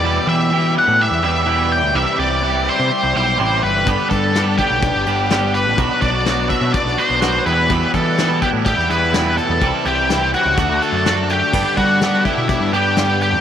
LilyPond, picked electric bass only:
\new Staff \with { instrumentName = "Picked electric bass" } { \clef bass \time 4/4 \key g \major \tempo 4 = 125 e,8 e4~ e16 a,8 e,16 e,4~ e,16 d,16 | c,16 r16 c,4~ c,16 c16 r16 c,16 b,,8 a,,8 g,,8 | g,,16 r16 g,4~ g,16 b,,8 g,,16 g,,4~ g,,16 a,,16 | b,,16 r16 b,,4~ b,,16 b,16 r16 b,,16 r16 b,,8. e,8~ |
e,8 e4~ e16 a,8 e,16 e,4~ e,16 e,16 | c,16 r16 c,4~ c,16 cis,16 d,16 d,16 r16 fis,4~ fis,16 | g,16 r16 g4~ g16 b,8 g,16 g,4~ g,16 fis,16 | }